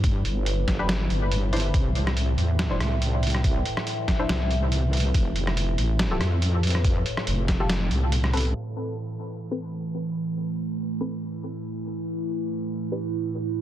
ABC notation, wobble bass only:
X:1
M:4/4
L:1/8
Q:"Swing 16ths" 1/4=141
K:Am
V:1 name="Wobble bass" clef=bass
G,, G,,,2 G,,,2 G,,,3 | C,,3 E,,2 C,,3- | C,, z3 C,,4 | F,,,3 A,,,2 F,,3- |
F,, z F,,,3 C,,3 | z8 | z8 | z8 |]